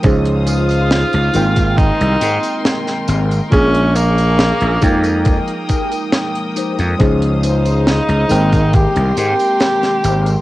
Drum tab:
HH |xxxxxxxxxxxxxxxx|xxxxxxxxxxxxxxxx|xxxxxxxxxxxxxxxx|
TB |x-xxx-xxx-xxx-xx|x-xxx-xxx-xxx-xx|x-xxx-xxx-xxx-xx|
SD |----o-------oo--|----o-------o---|----o-------oo--|
BD |o------oo-------|o-----o-o-o-----|o------oo-------|